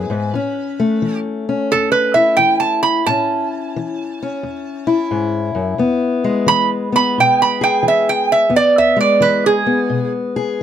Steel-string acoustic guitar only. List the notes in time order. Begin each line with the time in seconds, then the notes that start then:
Already playing: B3 E4 G#4
0.10 G#2
0.34 A2 C#4
0.80 A3
1.02 E3
1.49 C#4
1.74 E2
2.16 E4
2.39 E3
3.07 A2 C#4
3.76 E3
4.23 C#4
4.43 E2
4.87 E4
5.11 G#2
5.55 F#2
5.78 E2 B3
6.24 G#3
6.46 E3
6.92 B3
7.18 B2
7.61 G#4
7.83 E3
8.49 E2 B3
8.96 G#3
9.20 E3
9.66 B3
9.90 B2
10.36 G#4